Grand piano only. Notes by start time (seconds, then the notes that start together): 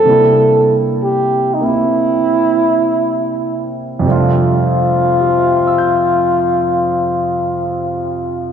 0.05 C3 G3 A#3 D4
0.10 E4
1.61 A#3 C4 E4
3.99 F2 C3
4.04 G3 A3
4.09 D4 F4
5.21 G4
5.28 C5
5.37 E5
5.45 G5
5.56 C6
5.67 E6
5.78 G6